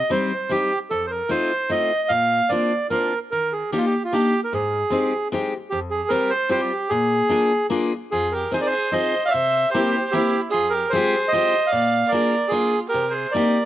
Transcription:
Already playing: D#5
0.10 G3 C4 D#4 G4 C5
0.49 G3 C4 D#4 G4
0.90 F2 A4
1.07 A#4 C5
1.29 A3 C4 D#4 F4 C5
1.70 A3 C4 D#4 F4 D#5
2.09 A#2 F5
2.49 A#3 C4 D4 F4 D5
2.90 A#3 C4 D4 F4 A#4
3.31 D#3 A#4
3.52 G#4
3.72 A#3 D4 D#4 G4
3.78 F4
3.86 G4
4.04 F4
4.13 A#3 D4 D#4 G4
4.44 A#4
4.53 G#2 G#4
4.90 G#3 C4 D#4 G4
5.32 G#3 C4 D#4 G4
5.70 F2 G4
5.90 G#4
6.09 G3 C4 F4 G4 A#4
6.30 C5
6.49 G3 C4 F4 G4 C5
6.61 G4
6.89 A#2 G#4
7.29 A#3 D4 F4 G#4
7.70 A#3 D4 F4 G#4
8.11 F2 F4 G#4
8.32 G4 A#4
8.52 C4 D#4 F4 G#4 C5
8.60 A#4 D5
8.66 G#4 C5
8.92 C4 D#4 F4 G#4 C5 D#5
9.26 D5 F5
9.30 C3 C5 E5
9.70 G4 C5
9.74 A#3 C4 E4 G4
10.11 A#3 C4 E4 G4
10.51 F2 F4 G#4
10.70 G4 A#4
10.90 G#3 C4 G#4 C5
10.95 F4 G4
11.28 C5 D#5
11.32 G#3 C4 F4 G4
11.67 D5 F5
11.73 A#2
12.08 A#4 D5
12.12 A#3 D4 F4 G#4
12.48 A#3 D4 F4 G#4
12.53 F4 G#4
12.89 G4 A#4
12.94 C3
13.10 G#4 C5
13.30 A#3 A#4 D5
13.35 C4 D#4 G4

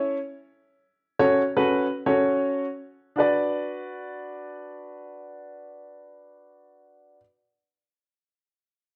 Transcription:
Already playing: C#4 E4 A4 C#5
1.19 C#4 F#4 A4 C#5
1.57 C#4 F#4 A4 B4
2.06 C#4 F#4 A4 C#5
3.16 D4 F#4 B4
3.20 D5

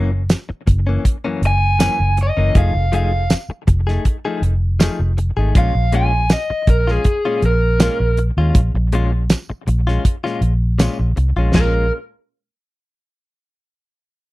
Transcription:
Already playing: F#1 F#2 E3 A#3 C#4
0.12 muted clean electric guitar stroke
0.29 snare, closed hi-hat, tambourine
0.49 muted clean electric guitar stroke, muted fingered electric bass stroke
0.67 F#1, muted clean electric guitar stroke, kick, closed hi-hat
0.87 E3 A#3 C#4
1.04 muted clean electric guitar stroke, kick, closed hi-hat
1.24 F#2 E3 A#3 C#4
1.42 F#1, muted clean electric guitar stroke, closed hi-hat
1.47 G#5
1.79 F#2 E3 A#3 C#4, snare, closed hi-hat, tambourine
2.00 F#1, muted clean electric guitar stroke
2.17 muted clean electric guitar stroke, closed hi-hat
2.23 D#5
2.37 F#1 E3 A#3 C#4
2.55 F1 F3 A3 D#4 G#4 F5, kick, closed hi-hat
2.75 F1, muted clean electric guitar stroke
2.92 F3 A3 D#4 G#4 F5, closed hi-hat
3.13 muted clean electric guitar stroke
3.30 snare, closed hi-hat, tambourine
3.49 muted fingered electric bass stroke, muted clean electric guitar stroke
3.67 F1, muted clean electric guitar stroke, kick, closed hi-hat
3.87 A3 D#4 G#4, snare
4.05 muted clean electric guitar stroke, kick, closed hi-hat
4.25 F3 A3 D#4 G#4
4.42 F1, muted clean electric guitar stroke, closed hi-hat
4.80 F3 A3 D#4 G#4, snare, closed hi-hat, tambourine
4.99 F1, muted clean electric guitar stroke
5.18 muted clean electric guitar stroke, closed hi-hat
5.37 G#1 A3 D#4 G#4
5.55 A#1 A#2 G#3 C#4 F4 F5, kick, closed hi-hat
5.75 A#1, muted clean electric guitar stroke
5.92 A#2 G#3 C#4 F4 G#5, closed hi-hat
6.13 muted clean electric guitar stroke
6.29 D#5, snare, closed hi-hat, tambourine
6.50 muted fingered electric bass stroke, muted clean electric guitar stroke
6.67 A#1 A#4, muted clean electric guitar stroke, kick, closed hi-hat
6.87 G#3 C#4 F4 G#4, snare
7.04 muted clean electric guitar stroke, kick, closed hi-hat
7.25 A#2 G#3 C#4 F4
7.42 A#1 A#4, muted clean electric guitar stroke, closed hi-hat
7.79 A#2 G#3 C#4 F4, snare, closed hi-hat, tambourine
8.00 A#1, muted clean electric guitar stroke
8.17 muted clean electric guitar stroke, closed hi-hat
8.37 D#2 G#3 C#4 F4
8.54 A#1, kick, closed hi-hat
8.74 A#1, muted clean electric guitar stroke
8.92 A#2 G#3 C#4 F4, closed hi-hat
9.12 muted clean electric guitar stroke
9.30 snare, closed hi-hat, tambourine
9.50 muted clean electric guitar stroke, muted fingered electric bass stroke
9.67 A#1, muted clean electric guitar stroke, closed hi-hat
9.87 G#3 C#4 F4, snare
10.04 muted clean electric guitar stroke, kick, closed hi-hat
10.24 A#2 G#3 C#4 F4, snare
10.41 A#1, muted clean electric guitar stroke, closed hi-hat
10.79 A#2 G#3 C#4 F4, snare, closed hi-hat, tambourine
10.99 A#1, muted clean electric guitar stroke
11.16 C2, muted clean electric guitar stroke, closed hi-hat
11.36 A#1 G#3 C#4 F4
11.54 A#1 A#2 G#3 C#4 F4 A#4, snare, floor tom, crash

